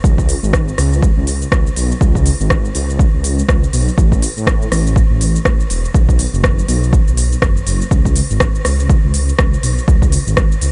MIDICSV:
0, 0, Header, 1, 3, 480
1, 0, Start_track
1, 0, Key_signature, 4, "minor"
1, 0, Tempo, 491803
1, 41, Time_signature, 4, 2, 24, 8
1, 10462, End_track
2, 0, Start_track
2, 0, Title_t, "Detuned saw bass"
2, 0, Program_c, 0, 39
2, 40, Note_on_c, 0, 37, 99
2, 332, Note_off_c, 0, 37, 0
2, 419, Note_on_c, 0, 32, 78
2, 697, Note_off_c, 0, 32, 0
2, 760, Note_on_c, 0, 37, 98
2, 1052, Note_off_c, 0, 37, 0
2, 1141, Note_on_c, 0, 37, 83
2, 1418, Note_off_c, 0, 37, 0
2, 1481, Note_on_c, 0, 37, 102
2, 1642, Note_off_c, 0, 37, 0
2, 1723, Note_on_c, 0, 35, 87
2, 1883, Note_off_c, 0, 35, 0
2, 1961, Note_on_c, 0, 37, 97
2, 2253, Note_off_c, 0, 37, 0
2, 2344, Note_on_c, 0, 32, 81
2, 2619, Note_off_c, 0, 32, 0
2, 2684, Note_on_c, 0, 37, 98
2, 2974, Note_off_c, 0, 37, 0
2, 3065, Note_on_c, 0, 37, 83
2, 3340, Note_off_c, 0, 37, 0
2, 3402, Note_on_c, 0, 37, 103
2, 3562, Note_off_c, 0, 37, 0
2, 3643, Note_on_c, 0, 35, 88
2, 3803, Note_off_c, 0, 35, 0
2, 3882, Note_on_c, 0, 33, 101
2, 4173, Note_off_c, 0, 33, 0
2, 4264, Note_on_c, 0, 45, 78
2, 4540, Note_off_c, 0, 45, 0
2, 4602, Note_on_c, 0, 33, 100
2, 4893, Note_off_c, 0, 33, 0
2, 4980, Note_on_c, 0, 33, 89
2, 5257, Note_off_c, 0, 33, 0
2, 5322, Note_on_c, 0, 33, 108
2, 5482, Note_off_c, 0, 33, 0
2, 5562, Note_on_c, 0, 28, 89
2, 5722, Note_off_c, 0, 28, 0
2, 5801, Note_on_c, 0, 35, 100
2, 6093, Note_off_c, 0, 35, 0
2, 6182, Note_on_c, 0, 30, 82
2, 6459, Note_off_c, 0, 30, 0
2, 6522, Note_on_c, 0, 35, 99
2, 6813, Note_off_c, 0, 35, 0
2, 6905, Note_on_c, 0, 35, 88
2, 7180, Note_off_c, 0, 35, 0
2, 7243, Note_on_c, 0, 30, 88
2, 7403, Note_off_c, 0, 30, 0
2, 7482, Note_on_c, 0, 30, 98
2, 7642, Note_off_c, 0, 30, 0
2, 7722, Note_on_c, 0, 37, 97
2, 8013, Note_off_c, 0, 37, 0
2, 8104, Note_on_c, 0, 32, 81
2, 8379, Note_off_c, 0, 32, 0
2, 8442, Note_on_c, 0, 37, 103
2, 8733, Note_off_c, 0, 37, 0
2, 8824, Note_on_c, 0, 37, 87
2, 9099, Note_off_c, 0, 37, 0
2, 9163, Note_on_c, 0, 37, 105
2, 9323, Note_off_c, 0, 37, 0
2, 9402, Note_on_c, 0, 35, 90
2, 9562, Note_off_c, 0, 35, 0
2, 9642, Note_on_c, 0, 37, 99
2, 9933, Note_off_c, 0, 37, 0
2, 10022, Note_on_c, 0, 32, 81
2, 10298, Note_off_c, 0, 32, 0
2, 10361, Note_on_c, 0, 37, 99
2, 10462, Note_off_c, 0, 37, 0
2, 10462, End_track
3, 0, Start_track
3, 0, Title_t, "Drums"
3, 39, Note_on_c, 9, 36, 119
3, 46, Note_on_c, 9, 69, 55
3, 137, Note_off_c, 9, 36, 0
3, 143, Note_off_c, 9, 69, 0
3, 179, Note_on_c, 9, 36, 62
3, 186, Note_on_c, 9, 69, 37
3, 276, Note_off_c, 9, 36, 0
3, 281, Note_on_c, 9, 46, 88
3, 284, Note_off_c, 9, 69, 0
3, 287, Note_on_c, 9, 69, 94
3, 378, Note_off_c, 9, 46, 0
3, 384, Note_off_c, 9, 69, 0
3, 427, Note_on_c, 9, 69, 40
3, 520, Note_on_c, 9, 36, 126
3, 521, Note_on_c, 9, 37, 105
3, 525, Note_off_c, 9, 69, 0
3, 527, Note_on_c, 9, 69, 55
3, 618, Note_off_c, 9, 36, 0
3, 619, Note_off_c, 9, 37, 0
3, 625, Note_off_c, 9, 69, 0
3, 667, Note_on_c, 9, 69, 37
3, 762, Note_on_c, 9, 37, 58
3, 762, Note_on_c, 9, 46, 77
3, 765, Note_off_c, 9, 69, 0
3, 768, Note_on_c, 9, 69, 89
3, 860, Note_off_c, 9, 37, 0
3, 860, Note_off_c, 9, 46, 0
3, 866, Note_off_c, 9, 69, 0
3, 907, Note_on_c, 9, 69, 40
3, 1001, Note_on_c, 9, 36, 116
3, 1005, Note_off_c, 9, 69, 0
3, 1010, Note_on_c, 9, 69, 54
3, 1098, Note_off_c, 9, 36, 0
3, 1108, Note_off_c, 9, 69, 0
3, 1241, Note_on_c, 9, 46, 85
3, 1247, Note_on_c, 9, 69, 92
3, 1339, Note_off_c, 9, 46, 0
3, 1345, Note_off_c, 9, 69, 0
3, 1387, Note_on_c, 9, 69, 40
3, 1481, Note_on_c, 9, 36, 122
3, 1483, Note_on_c, 9, 37, 100
3, 1485, Note_off_c, 9, 69, 0
3, 1489, Note_on_c, 9, 69, 53
3, 1579, Note_off_c, 9, 36, 0
3, 1581, Note_off_c, 9, 37, 0
3, 1586, Note_off_c, 9, 69, 0
3, 1627, Note_on_c, 9, 69, 36
3, 1722, Note_on_c, 9, 46, 76
3, 1725, Note_off_c, 9, 69, 0
3, 1728, Note_on_c, 9, 69, 93
3, 1820, Note_off_c, 9, 46, 0
3, 1826, Note_off_c, 9, 69, 0
3, 1868, Note_on_c, 9, 69, 38
3, 1962, Note_on_c, 9, 36, 115
3, 1966, Note_off_c, 9, 69, 0
3, 1970, Note_on_c, 9, 69, 53
3, 2059, Note_off_c, 9, 36, 0
3, 2067, Note_off_c, 9, 69, 0
3, 2101, Note_on_c, 9, 36, 60
3, 2110, Note_on_c, 9, 69, 36
3, 2199, Note_off_c, 9, 36, 0
3, 2203, Note_on_c, 9, 46, 88
3, 2208, Note_off_c, 9, 69, 0
3, 2208, Note_on_c, 9, 69, 92
3, 2300, Note_off_c, 9, 46, 0
3, 2306, Note_off_c, 9, 69, 0
3, 2348, Note_on_c, 9, 69, 38
3, 2442, Note_on_c, 9, 36, 118
3, 2442, Note_on_c, 9, 37, 103
3, 2446, Note_off_c, 9, 69, 0
3, 2448, Note_on_c, 9, 69, 53
3, 2540, Note_off_c, 9, 36, 0
3, 2540, Note_off_c, 9, 37, 0
3, 2546, Note_off_c, 9, 69, 0
3, 2587, Note_on_c, 9, 69, 36
3, 2682, Note_on_c, 9, 46, 77
3, 2685, Note_off_c, 9, 69, 0
3, 2688, Note_on_c, 9, 69, 87
3, 2780, Note_off_c, 9, 46, 0
3, 2786, Note_off_c, 9, 69, 0
3, 2828, Note_on_c, 9, 69, 39
3, 2922, Note_on_c, 9, 36, 108
3, 2926, Note_off_c, 9, 69, 0
3, 2930, Note_on_c, 9, 69, 51
3, 3020, Note_off_c, 9, 36, 0
3, 3027, Note_off_c, 9, 69, 0
3, 3164, Note_on_c, 9, 46, 88
3, 3169, Note_on_c, 9, 69, 89
3, 3261, Note_off_c, 9, 46, 0
3, 3267, Note_off_c, 9, 69, 0
3, 3308, Note_on_c, 9, 69, 39
3, 3402, Note_on_c, 9, 36, 116
3, 3404, Note_on_c, 9, 37, 102
3, 3406, Note_off_c, 9, 69, 0
3, 3410, Note_on_c, 9, 69, 52
3, 3499, Note_off_c, 9, 36, 0
3, 3501, Note_off_c, 9, 37, 0
3, 3507, Note_off_c, 9, 69, 0
3, 3549, Note_on_c, 9, 69, 35
3, 3643, Note_on_c, 9, 46, 78
3, 3647, Note_off_c, 9, 69, 0
3, 3649, Note_on_c, 9, 69, 91
3, 3741, Note_off_c, 9, 46, 0
3, 3746, Note_off_c, 9, 69, 0
3, 3788, Note_on_c, 9, 69, 37
3, 3882, Note_on_c, 9, 36, 113
3, 3886, Note_off_c, 9, 69, 0
3, 3888, Note_on_c, 9, 69, 53
3, 3979, Note_off_c, 9, 36, 0
3, 3985, Note_off_c, 9, 69, 0
3, 4021, Note_on_c, 9, 36, 57
3, 4028, Note_on_c, 9, 69, 36
3, 4118, Note_off_c, 9, 36, 0
3, 4123, Note_on_c, 9, 46, 96
3, 4126, Note_off_c, 9, 69, 0
3, 4129, Note_on_c, 9, 69, 93
3, 4220, Note_off_c, 9, 46, 0
3, 4226, Note_off_c, 9, 69, 0
3, 4268, Note_on_c, 9, 69, 39
3, 4362, Note_on_c, 9, 36, 119
3, 4365, Note_on_c, 9, 37, 108
3, 4366, Note_off_c, 9, 69, 0
3, 4371, Note_on_c, 9, 69, 51
3, 4459, Note_off_c, 9, 36, 0
3, 4462, Note_off_c, 9, 37, 0
3, 4468, Note_off_c, 9, 69, 0
3, 4510, Note_on_c, 9, 69, 36
3, 4605, Note_on_c, 9, 37, 60
3, 4605, Note_on_c, 9, 46, 77
3, 4608, Note_off_c, 9, 69, 0
3, 4611, Note_on_c, 9, 69, 89
3, 4703, Note_off_c, 9, 37, 0
3, 4703, Note_off_c, 9, 46, 0
3, 4709, Note_off_c, 9, 69, 0
3, 4752, Note_on_c, 9, 69, 39
3, 4841, Note_on_c, 9, 36, 107
3, 4849, Note_off_c, 9, 69, 0
3, 4853, Note_on_c, 9, 69, 50
3, 4939, Note_off_c, 9, 36, 0
3, 4951, Note_off_c, 9, 69, 0
3, 5085, Note_on_c, 9, 46, 93
3, 5091, Note_on_c, 9, 69, 91
3, 5183, Note_off_c, 9, 46, 0
3, 5189, Note_off_c, 9, 69, 0
3, 5228, Note_on_c, 9, 69, 38
3, 5322, Note_on_c, 9, 36, 116
3, 5323, Note_on_c, 9, 37, 102
3, 5326, Note_off_c, 9, 69, 0
3, 5329, Note_on_c, 9, 69, 50
3, 5419, Note_off_c, 9, 36, 0
3, 5421, Note_off_c, 9, 37, 0
3, 5426, Note_off_c, 9, 69, 0
3, 5468, Note_on_c, 9, 69, 35
3, 5564, Note_on_c, 9, 46, 81
3, 5565, Note_off_c, 9, 69, 0
3, 5570, Note_on_c, 9, 69, 89
3, 5662, Note_off_c, 9, 46, 0
3, 5668, Note_off_c, 9, 69, 0
3, 5709, Note_on_c, 9, 69, 35
3, 5802, Note_on_c, 9, 36, 119
3, 5807, Note_off_c, 9, 69, 0
3, 5810, Note_on_c, 9, 69, 54
3, 5900, Note_off_c, 9, 36, 0
3, 5907, Note_off_c, 9, 69, 0
3, 5942, Note_on_c, 9, 36, 58
3, 5949, Note_on_c, 9, 69, 36
3, 6039, Note_off_c, 9, 36, 0
3, 6042, Note_on_c, 9, 46, 94
3, 6047, Note_off_c, 9, 69, 0
3, 6048, Note_on_c, 9, 69, 93
3, 6140, Note_off_c, 9, 46, 0
3, 6146, Note_off_c, 9, 69, 0
3, 6189, Note_on_c, 9, 69, 38
3, 6282, Note_on_c, 9, 36, 118
3, 6284, Note_on_c, 9, 37, 108
3, 6286, Note_off_c, 9, 69, 0
3, 6290, Note_on_c, 9, 69, 54
3, 6380, Note_off_c, 9, 36, 0
3, 6382, Note_off_c, 9, 37, 0
3, 6388, Note_off_c, 9, 69, 0
3, 6430, Note_on_c, 9, 69, 36
3, 6524, Note_on_c, 9, 46, 81
3, 6528, Note_off_c, 9, 69, 0
3, 6530, Note_on_c, 9, 69, 85
3, 6622, Note_off_c, 9, 46, 0
3, 6628, Note_off_c, 9, 69, 0
3, 6669, Note_on_c, 9, 69, 40
3, 6762, Note_on_c, 9, 36, 114
3, 6767, Note_off_c, 9, 69, 0
3, 6770, Note_on_c, 9, 69, 50
3, 6860, Note_off_c, 9, 36, 0
3, 6867, Note_off_c, 9, 69, 0
3, 6909, Note_on_c, 9, 69, 34
3, 7002, Note_on_c, 9, 46, 97
3, 7006, Note_off_c, 9, 69, 0
3, 7008, Note_on_c, 9, 69, 89
3, 7100, Note_off_c, 9, 46, 0
3, 7106, Note_off_c, 9, 69, 0
3, 7149, Note_on_c, 9, 69, 40
3, 7242, Note_on_c, 9, 36, 118
3, 7243, Note_on_c, 9, 37, 109
3, 7246, Note_off_c, 9, 69, 0
3, 7249, Note_on_c, 9, 69, 51
3, 7340, Note_off_c, 9, 36, 0
3, 7341, Note_off_c, 9, 37, 0
3, 7347, Note_off_c, 9, 69, 0
3, 7388, Note_on_c, 9, 69, 36
3, 7482, Note_on_c, 9, 46, 81
3, 7485, Note_off_c, 9, 69, 0
3, 7488, Note_on_c, 9, 69, 92
3, 7580, Note_off_c, 9, 46, 0
3, 7586, Note_off_c, 9, 69, 0
3, 7627, Note_on_c, 9, 69, 37
3, 7722, Note_on_c, 9, 36, 118
3, 7725, Note_off_c, 9, 69, 0
3, 7728, Note_on_c, 9, 69, 58
3, 7820, Note_off_c, 9, 36, 0
3, 7825, Note_off_c, 9, 69, 0
3, 7861, Note_on_c, 9, 36, 62
3, 7866, Note_on_c, 9, 69, 37
3, 7959, Note_off_c, 9, 36, 0
3, 7960, Note_on_c, 9, 46, 95
3, 7964, Note_off_c, 9, 69, 0
3, 7966, Note_on_c, 9, 69, 97
3, 8058, Note_off_c, 9, 46, 0
3, 8064, Note_off_c, 9, 69, 0
3, 8106, Note_on_c, 9, 69, 40
3, 8201, Note_on_c, 9, 37, 114
3, 8202, Note_on_c, 9, 36, 120
3, 8203, Note_off_c, 9, 69, 0
3, 8206, Note_on_c, 9, 69, 56
3, 8298, Note_off_c, 9, 37, 0
3, 8299, Note_off_c, 9, 36, 0
3, 8304, Note_off_c, 9, 69, 0
3, 8347, Note_on_c, 9, 69, 39
3, 8441, Note_on_c, 9, 37, 63
3, 8441, Note_on_c, 9, 46, 81
3, 8444, Note_off_c, 9, 69, 0
3, 8447, Note_on_c, 9, 69, 88
3, 8539, Note_off_c, 9, 37, 0
3, 8539, Note_off_c, 9, 46, 0
3, 8545, Note_off_c, 9, 69, 0
3, 8586, Note_on_c, 9, 69, 40
3, 8682, Note_on_c, 9, 36, 117
3, 8684, Note_off_c, 9, 69, 0
3, 8687, Note_on_c, 9, 69, 53
3, 8780, Note_off_c, 9, 36, 0
3, 8784, Note_off_c, 9, 69, 0
3, 8920, Note_on_c, 9, 46, 96
3, 8926, Note_on_c, 9, 69, 93
3, 9017, Note_off_c, 9, 46, 0
3, 9023, Note_off_c, 9, 69, 0
3, 9066, Note_on_c, 9, 69, 39
3, 9160, Note_on_c, 9, 37, 112
3, 9162, Note_on_c, 9, 36, 117
3, 9164, Note_off_c, 9, 69, 0
3, 9166, Note_on_c, 9, 69, 51
3, 9258, Note_off_c, 9, 37, 0
3, 9259, Note_off_c, 9, 36, 0
3, 9264, Note_off_c, 9, 69, 0
3, 9308, Note_on_c, 9, 69, 37
3, 9401, Note_on_c, 9, 46, 83
3, 9406, Note_off_c, 9, 69, 0
3, 9407, Note_on_c, 9, 69, 91
3, 9499, Note_off_c, 9, 46, 0
3, 9505, Note_off_c, 9, 69, 0
3, 9548, Note_on_c, 9, 69, 39
3, 9642, Note_on_c, 9, 36, 123
3, 9646, Note_off_c, 9, 69, 0
3, 9648, Note_on_c, 9, 69, 59
3, 9739, Note_off_c, 9, 36, 0
3, 9745, Note_off_c, 9, 69, 0
3, 9781, Note_on_c, 9, 36, 65
3, 9786, Note_on_c, 9, 69, 40
3, 9878, Note_off_c, 9, 36, 0
3, 9880, Note_on_c, 9, 46, 96
3, 9884, Note_off_c, 9, 69, 0
3, 9886, Note_on_c, 9, 69, 97
3, 9978, Note_off_c, 9, 46, 0
3, 9983, Note_off_c, 9, 69, 0
3, 10026, Note_on_c, 9, 69, 42
3, 10120, Note_on_c, 9, 37, 112
3, 10121, Note_on_c, 9, 36, 127
3, 10124, Note_off_c, 9, 69, 0
3, 10126, Note_on_c, 9, 69, 55
3, 10218, Note_off_c, 9, 37, 0
3, 10219, Note_off_c, 9, 36, 0
3, 10224, Note_off_c, 9, 69, 0
3, 10266, Note_on_c, 9, 69, 40
3, 10360, Note_on_c, 9, 46, 78
3, 10364, Note_off_c, 9, 69, 0
3, 10366, Note_on_c, 9, 69, 98
3, 10458, Note_off_c, 9, 46, 0
3, 10462, Note_off_c, 9, 69, 0
3, 10462, End_track
0, 0, End_of_file